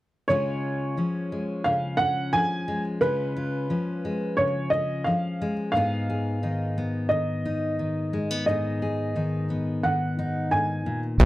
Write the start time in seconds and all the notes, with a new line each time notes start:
0.28 C#3 G#3 C#4 F4 C#5
0.97 F3 C#4
1.32 G#3
1.64 C#3 F5
1.97 C#4 F#5
2.33 F3 G#5
2.68 G#3
3.01 C#3 G#3 C#4 F4 B4
3.36 F4
3.70 F3 C#4
4.05 G#3
4.37 C#3 C#5
4.70 C#4 D#5
5.04 F3 F5
5.42 G#3
5.72 G#2 B3 F5
5.76 D#4 G#4
6.10 G#4
6.43 D#3 D#4
6.78 B3
7.09 D#3 D#5
7.45 D#4
7.79 D#3
8.13 G#3
8.31 B3
8.46 G#2 B3 D#4 G#4 D#5
8.82 G#4
9.16 D#3 D#4
9.50 B3
9.83 D#3 F#5
10.19 D#4
10.51 G#2 G#5
10.86 A#2
11.20 B1 B2 D#4 F#4 A#5